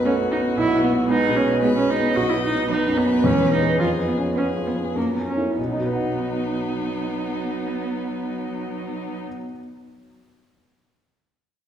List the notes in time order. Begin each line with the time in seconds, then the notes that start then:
Already playing: B1 F#2 B3 B4
0.05 A3 C#4 F#4 A4
0.22 B4
0.32 D#4
0.39 B3
0.57 B1 E4
0.75 B4
0.83 B3
0.93 B3
1.07 G#3 D#4 G#4 B4
1.29 B2
1.36 C#4
1.46 B4
1.61 G#3 B3 G#4 B4
1.77 C#4
1.81 B4
1.90 D#4
1.99 B3
2.15 B1 F#4 D#5
2.29 E4
2.34 B4
2.43 D#4
2.52 B3
2.68 F#3 D#4 B4
2.87 F#2
2.97 B3
3.06 B4
3.24 E2 G#3 C#4
3.42 B3
3.53 D#4
3.61 G#4 B4
3.78 F2 F4 G#4
3.98 B4
4.08 B3
4.17 C#4
4.37 B3 C#4 G#4 B4
4.57 F3
4.67 B3
4.76 B4
4.96 F#2 A#3 A#4
5.13 B3
5.17 C#4
5.27 C#4
5.37 E4 A#4
5.57 B1 F#3 B3 D#4
5.65 B2
5.72 D#4
5.79 F#4
5.86 B4
5.93 F#5